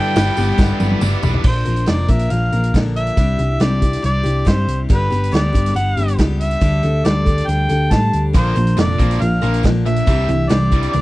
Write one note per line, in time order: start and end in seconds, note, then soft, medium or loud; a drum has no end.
0.00 0.17 G2 medium
0.00 0.17 D3 medium
0.00 0.15 G3 medium
0.00 0.16 B3 loud
0.00 0.16 B3 medium
0.00 0.16 D4 medium
0.00 0.17 E4 medium
0.00 0.18 G4 medium
0.00 1.41 G4 medium
0.00 0.17 B4 medium
0.00 1.42 D5 medium
0.00 0.98 G5 loud
0.00 1.43 B5 medium
0.00 1.42 E6 medium
0.15 0.29 G1 medium
0.15 0.59 G3 loud
0.15 0.38 G3 medium
0.15 0.38 B3 loud
0.15 0.38 B3 medium
0.15 0.38 D4 loud
0.15 0.37 E4 medium
0.15 0.36 G4 medium
0.15 0.36 B4 loud
0.15 snare loud
0.15 open hi-hat medium
0.15 tambourine medium
0.37 0.51 G1 medium
0.37 0.58 G3 soft
0.37 1.02 B3 medium
0.37 0.58 B3 medium
0.37 1.01 D4 medium
0.37 0.59 E4 medium
0.37 0.59 G4 medium
0.37 1.02 B4 medium
0.37 open hi-hat medium
0.37 tambourine medium
0.58 0.72 G1 loud
0.58 1.01 G2 medium
0.58 1.02 D3 medium
0.58 1.00 G3 medium
0.58 1.01 B3 medium
0.58 1.02 E4 loud
0.58 1.03 G4 medium
0.58 kick loud
0.58 snare medium
0.58 tambourine medium
0.80 0.94 G1 medium
0.80 high tom medium
0.80 tambourine medium
0.90 high tom medium
1.01 1.15 G1 medium
1.01 1.44 G3 medium
1.01 1.43 G3 medium
1.01 1.45 B3 medium
1.01 1.23 B3 medium
1.01 1.24 D4 medium
1.01 1.45 E4 medium
1.01 1.45 G4 medium
1.01 1.22 B4 medium
1.01 mid tom medium
1.01 tambourine loud
1.23 1.37 B1 medium
1.23 1.44 B3 medium
1.23 1.45 D4 medium
1.23 1.44 B4 medium
1.23 floor tom loud
1.23 tambourine medium
1.34 floor tom medium
1.44 1.63 A#1 medium
1.44 1.66 A#2 medium
1.44 1.66 D3 medium
1.44 1.66 F3 medium
1.44 1.66 A#3 medium
1.44 1.65 D4 medium
1.44 1.64 A#4 medium
1.44 1.90 C5 medium
1.44 kick loud
1.44 crash loud
1.65 1.85 A#1 medium
1.65 1.87 F3 soft
1.65 1.87 A#3 soft
1.65 1.88 D4 soft
1.65 1.87 A#4 medium
1.65 closed hi-hat medium
1.76 closed hi-hat medium
1.86 2.06 F1 medium
1.86 2.09 A#2 medium
1.86 2.09 D3 medium
1.86 2.10 F3 medium
1.86 2.09 A#3 medium
1.86 2.08 D4 medium
1.86 2.07 A#4 medium
1.86 2.12 D5 medium
1.86 snare loud
1.86 closed hi-hat medium
2.08 2.27 A#1 medium
2.08 2.29 F3 soft
2.08 2.30 A#3 soft
2.08 2.31 D4 soft
2.08 2.30 A#4 medium
2.08 2.33 E5 medium
2.08 kick medium
2.08 closed hi-hat medium
2.19 closed hi-hat medium
2.30 2.49 A#1 medium
2.30 2.52 F3 medium
2.30 2.53 A#3 medium
2.30 2.52 D4 medium
2.30 2.51 A#4 medium
2.30 2.74 F5 medium
2.30 closed hi-hat medium
2.52 2.71 A#1 medium
2.52 2.74 F3 soft
2.52 2.75 A#3 soft
2.52 2.75 D4 soft
2.52 2.74 A#4 soft
2.52 closed hi-hat medium
2.64 closed hi-hat medium
2.74 3.10 A#1 medium
2.74 3.17 A#2 medium
2.74 3.16 D3 medium
2.74 3.17 F3 medium
2.74 3.18 A#3 medium
2.74 3.18 D4 medium
2.74 3.18 A#4 medium
2.74 kick medium
2.74 snare medium
2.74 closed hi-hat medium
2.96 3.63 E5 medium
2.96 closed hi-hat medium
3.07 closed hi-hat medium
3.17 3.35 C2 medium
3.17 3.39 C3 medium
3.17 3.39 G3 medium
3.17 3.39 D4 medium
3.17 3.39 E4 medium
3.17 3.37 G4 medium
3.17 kick loud
3.17 closed hi-hat medium
3.38 3.57 C2 medium
3.38 3.60 D4 soft
3.38 3.61 E4 soft
3.38 3.60 G4 medium
3.38 closed hi-hat medium
3.60 3.96 C2 medium
3.60 3.82 C3 medium
3.60 3.82 G3 medium
3.60 3.83 D4 medium
3.60 3.82 E4 medium
3.60 3.80 G4 medium
3.60 4.04 D5 medium
3.60 snare loud
3.60 closed hi-hat medium
3.81 4.03 D4 soft
3.81 4.03 E4 soft
3.81 4.03 G4 soft
3.81 kick medium
3.81 closed hi-hat medium
3.93 snare soft
3.93 closed hi-hat medium
4.02 4.22 C2 medium
4.02 4.24 G3 medium
4.02 4.25 D4 medium
4.02 4.24 E4 medium
4.02 4.22 G4 medium
4.02 4.49 D5 medium
4.02 closed hi-hat medium
4.23 4.43 C2 medium
4.23 4.45 D4 soft
4.23 4.46 E4 soft
4.23 4.46 G4 medium
4.23 closed hi-hat medium
4.45 4.65 G2 medium
4.45 4.89 C3 medium
4.45 4.90 G3 medium
4.45 4.90 D4 medium
4.45 4.90 E4 medium
4.45 4.90 G4 medium
4.45 4.80 C5 medium
4.45 kick medium
4.45 snare loud
4.45 closed hi-hat medium
4.67 4.86 C2 medium
4.67 closed hi-hat medium
4.89 5.08 G1 medium
4.89 5.11 G2 medium
4.89 5.11 D3 medium
4.89 5.11 G3 medium
4.89 5.11 B3 medium
4.89 5.10 D4 medium
4.89 5.09 G4 medium
4.89 5.36 B4 medium
4.89 kick loud
4.89 closed hi-hat medium
5.10 5.30 G1 medium
5.10 5.31 G3 soft
5.10 5.32 B3 soft
5.10 5.32 D4 soft
5.10 5.32 G4 medium
5.10 closed hi-hat medium
5.24 closed hi-hat medium
5.31 5.51 D2 medium
5.31 5.54 G2 medium
5.31 5.54 D3 medium
5.31 5.54 G3 medium
5.31 5.54 B3 medium
5.31 5.53 D4 medium
5.31 5.51 G4 medium
5.31 5.75 D5 medium
5.31 snare loud
5.31 closed hi-hat medium
5.53 5.73 G1 medium
5.53 5.73 G3 soft
5.53 5.75 B3 soft
5.53 5.76 D4 medium
5.53 5.75 G4 medium
5.53 kick medium
5.53 closed hi-hat medium
5.66 snare soft
5.66 closed hi-hat medium
5.74 5.93 G1 medium
5.74 5.97 G3 medium
5.74 5.98 B3 medium
5.74 5.97 D4 medium
5.74 5.96 G4 medium
5.74 6.16 F#5 loud
5.74 closed hi-hat medium
5.97 6.15 G1 medium
5.97 6.18 G3 soft
5.97 6.18 B3 soft
5.97 6.19 D4 soft
5.97 6.19 G4 medium
5.97 closed hi-hat medium
6.08 closed hi-hat medium
6.18 6.55 C#2 medium
6.18 6.62 G2 medium
6.18 6.61 G3 medium
6.18 6.62 B3 medium
6.18 6.62 D4 medium
6.18 6.62 G4 medium
6.18 kick medium
6.18 snare medium
6.18 closed hi-hat medium
6.40 7.06 E5 loud
6.40 closed hi-hat medium
6.51 closed hi-hat medium
6.61 6.80 D2 medium
6.61 6.83 D3 medium
6.61 6.84 G3 medium
6.61 6.84 D4 medium
6.61 6.84 G4 medium
6.61 6.82 A4 medium
6.61 kick loud
6.61 closed hi-hat medium
6.83 7.02 D2 medium
6.83 7.05 D4 soft
6.83 7.05 G4 soft
6.83 7.05 A4 soft
6.83 closed hi-hat medium
7.05 7.41 D2 medium
7.05 7.27 D3 medium
7.05 7.27 G3 medium
7.05 7.27 D4 medium
7.05 7.26 G4 medium
7.05 7.24 A4 medium
7.05 7.49 D5 medium
7.05 snare loud
7.05 closed hi-hat medium
7.25 7.47 D4 soft
7.25 7.48 G4 soft
7.25 7.48 A4 soft
7.25 kick medium
7.25 closed hi-hat medium
7.38 closed hi-hat medium
7.47 7.66 D2 medium
7.47 7.70 G3 medium
7.47 7.70 D4 medium
7.47 7.69 G4 medium
7.47 7.68 A4 medium
7.47 7.93 G5 loud
7.47 closed hi-hat medium
7.69 7.88 D2 medium
7.69 7.92 D4 soft
7.69 7.92 G4 soft
7.69 7.91 A4 medium
7.69 closed hi-hat medium
7.91 8.10 A2 medium
7.91 8.33 D3 medium
7.91 8.34 G3 medium
7.91 8.35 D4 medium
7.91 8.35 G4 medium
7.91 8.35 A4 medium
7.91 8.24 A5 loud
7.91 kick medium
7.91 snare medium
7.91 closed hi-hat medium
8.13 8.32 D2 medium
8.13 closed hi-hat medium
8.33 8.53 A#1 medium
8.33 8.56 A#2 medium
8.33 8.55 A#2 medium
8.33 8.56 D3 medium
8.33 8.57 F3 medium
8.33 8.55 F3 medium
8.33 8.56 A#3 medium
8.33 8.55 D4 medium
8.33 8.54 A#4 medium
8.33 8.76 C5 medium
8.33 kick loud
8.33 closed hi-hat medium
8.55 8.74 A#1 medium
8.55 8.76 A#2 medium
8.55 8.76 F3 medium
8.55 8.77 F3 soft
8.55 8.77 A#3 soft
8.55 8.78 D4 soft
8.55 8.77 A#4 medium
8.55 closed hi-hat medium
8.67 closed hi-hat medium
8.77 8.96 F1 medium
8.77 8.99 A#2 medium
8.77 8.97 A#2 medium
8.77 8.99 D3 medium
8.77 8.97 F3 medium
8.77 9.00 F3 medium
8.77 9.00 A#3 medium
8.77 8.99 D4 medium
8.77 8.98 A#4 medium
8.77 9.23 D5 medium
8.77 snare loud
8.77 closed hi-hat medium
8.99 9.18 A#1 medium
8.99 9.19 A#2 medium
8.99 9.20 F3 medium
8.99 9.18 F3 soft
8.99 9.20 A#3 medium
8.99 9.19 A#3 soft
8.99 9.21 D4 soft
8.99 9.21 A#4 soft
8.99 kick medium
8.99 closed hi-hat medium
9.11 snare soft
9.11 closed hi-hat medium
9.19 9.39 A#1 medium
9.19 9.41 A#2 medium
9.19 9.42 F3 medium
9.19 9.41 F3 medium
9.19 9.42 A#3 medium
9.19 9.42 D4 medium
9.19 9.40 A#4 medium
9.19 9.65 F5 medium
9.19 closed hi-hat medium
9.41 9.61 A#1 medium
9.41 9.63 A#2 medium
9.41 9.63 F3 medium
9.41 9.62 F3 soft
9.41 9.63 A#3 loud
9.41 9.63 A#3 soft
9.41 9.64 D4 medium
9.41 9.64 A#4 medium
9.41 closed hi-hat medium
9.54 closed hi-hat medium
9.63 10.00 A#1 medium
9.63 10.07 A#2 medium
9.63 9.84 A#2 medium
9.63 10.06 D3 medium
9.63 10.06 F3 medium
9.63 9.84 F3 medium
9.63 10.07 A#3 medium
9.63 10.07 D4 medium
9.63 10.08 A#4 medium
9.63 kick medium
9.63 snare medium
9.63 closed hi-hat medium
9.85 10.05 A#2 medium
9.85 10.05 F3 medium
9.85 10.51 E5 loud
9.85 closed hi-hat medium
9.96 closed hi-hat medium
10.06 10.25 C2 medium
10.06 10.29 C3 medium
10.06 10.28 C3 medium
10.06 10.28 E3 medium
10.06 10.29 G3 medium
10.06 10.28 G3 medium
10.06 10.29 D4 medium
10.06 10.29 E4 medium
10.06 10.27 G4 medium
10.06 kick loud
10.06 closed hi-hat medium
10.28 10.47 C2 medium
10.28 10.48 C3 medium
10.28 10.49 E3 medium
10.28 10.50 D4 soft
10.28 10.50 E4 soft
10.28 10.50 G4 soft
10.28 closed hi-hat medium
10.49 10.87 C2 medium
10.49 10.72 C3 medium
10.49 10.70 C3 medium
10.49 10.70 E3 medium
10.49 10.72 G3 medium
10.49 10.72 D4 medium
10.49 10.72 E4 medium
10.49 10.70 G4 medium
10.49 10.91 D5 medium
10.49 snare loud
10.49 closed hi-hat medium
10.71 10.93 C3 medium
10.71 10.93 E3 medium
10.71 10.93 G3 medium
10.71 10.93 D4 soft
10.71 10.94 E4 soft
10.71 10.93 G4 medium
10.71 kick medium
10.71 closed hi-hat medium
10.83 closed hi-hat medium
10.91 11.02 C2 medium
10.91 11.02 C3 medium
10.91 11.02 E3 medium
10.91 11.02 G3 medium
10.91 11.02 D4 medium
10.91 11.02 D5 loud
10.91 closed hi-hat medium
10.96 11.02 E4 medium
10.96 11.02 G4 medium